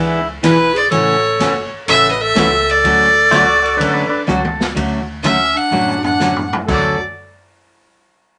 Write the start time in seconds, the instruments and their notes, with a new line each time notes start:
Already playing: upright bass C#2, steel-string acoustic guitar E3 B3 D4 G#4, pedal steel guitar E4
0.43 upright bass B1, steel-string acoustic guitar E3 B3 D4 G#4, clarinet E4, fiddle B4, kick, snare, hi-hat pedal, ride
0.74 clarinet G#4, fiddle D5, ride
0.90 upright bass A1, steel-string acoustic guitar C#3 E3 A3 C#4 F#4, clarinet A4, fiddle C#5, kick, ride
1.39 upright bass F#1, steel-string acoustic guitar C#3 E3 A3 C#4 F#4, kick, snare, hi-hat pedal, ride
1.73 muted upright bass stroke
1.88 upright bass A1, steel-string acoustic guitar C#3 E3 A3 C#4 F#4, clarinet A4, fiddle E5, kick, ride
2.11 clarinet B4, fiddle D#5
2.20 clarinet A4, fiddle E5
2.35 upright bass C#2, steel-string acoustic guitar C#3 E3 A3 C#4 F#4, kick, snare, hi-hat pedal, ride
2.69 clarinet A4, fiddle D5, ride
2.84 upright bass D2, steel-string acoustic guitar D3 F#3 A3 C#4 F#4, kick, ride
3.31 upright bass C#2, steel-string acoustic guitar D3 F#3 A3 C#4 F#4, pedal steel guitar F#4 D5, kick, snare, hi-hat pedal, ride
3.46 pedal steel guitar F#4 D5
3.62 pedal steel guitar F#4 D5, ride
3.77 upright bass F#1, steel-string acoustic guitar D3 F#3 A3, pedal steel guitar D4 B4, kick, ride
3.81 steel-string acoustic guitar C#4 F#4
3.94 pedal steel guitar D4 B4
4.09 pedal steel guitar D4 B4, muted upright bass stroke
4.27 upright bass C#2, steel-string acoustic guitar D3 F#3 A3 C#4 F#4, hi-hat pedal, high tom
4.45 high tom
4.61 snare
4.75 upright bass D2, steel-string acoustic guitar D3 F#3 A3 C#4 F#4, kick, ride
5.23 steel-string acoustic guitar D3 F#3 A3 C#4 F#4, clarinet C#4, fiddle E5, kick, hi-hat pedal, ride
5.55 clarinet D4, fiddle F#5
5.71 upright bass A1, steel-string acoustic guitar D3 F#3 A3 C#4 F#4, floor tom
5.88 floor tom
6.04 clarinet D4, fiddle F#5, floor tom
6.20 steel-string acoustic guitar D3 F#3 A3 C#4 F#4, snare, hi-hat pedal
6.36 floor tom
6.53 floor tom
6.67 upright bass D2, steel-string acoustic guitar D3 F#3 A3 C#4 F#4, clarinet A4, pedal steel guitar A4, fiddle D5, kick, china